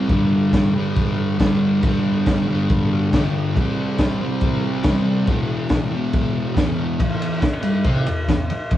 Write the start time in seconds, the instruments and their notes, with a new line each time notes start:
Already playing: distorted electric guitar G3
0.07 distorted electric guitar G2 D3, kick, crash
0.12 distorted electric guitar G3
0.53 kick, snare, crash
0.74 distorted electric guitar D3 G3
0.78 distorted electric guitar G2
0.96 kick, crash
1.39 distorted electric guitar G2 D3, kick, snare, crash
1.44 distorted electric guitar G3
1.82 distorted electric guitar G2 D3, kick, crash
1.87 distorted electric guitar G3
2.26 kick, snare, crash
2.47 distorted electric guitar D3 G3
2.52 distorted electric guitar G2
2.70 kick, crash
3.12 distorted electric guitar G2 D3, kick, snare, crash
3.16 distorted electric guitar G3
3.55 distorted electric guitar C3 G3, kick, crash
3.60 distorted electric guitar C4
3.98 kick, snare, crash
4.20 distorted electric guitar G3 C4
4.26 distorted electric guitar C3
4.41 kick, crash
4.83 distorted electric guitar C3, kick, snare, crash
4.88 distorted electric guitar G3 C4
5.26 distorted electric guitar E2 B2, kick, crash
5.31 distorted electric guitar E3
5.69 kick, snare, crash
5.90 distorted electric guitar B2 E3
5.95 distorted electric guitar E2
6.13 kick, crash
6.55 distorted electric guitar E2 B2, kick, snare, crash
6.60 distorted electric guitar E3
6.99 distorted electric guitar E2 E3, kick, ride
7.22 ride
7.41 muted distorted electric guitar stroke, kick, snare, ride
7.63 distorted electric guitar G2 G3, ride
7.84 distorted electric guitar C3 C4, kick, ride
8.06 distorted electric guitar E2, ride
8.28 distorted electric guitar E2, kick, snare, ride
8.50 muted distorted electric guitar stroke, ride
8.71 distorted electric guitar E2, kick, ride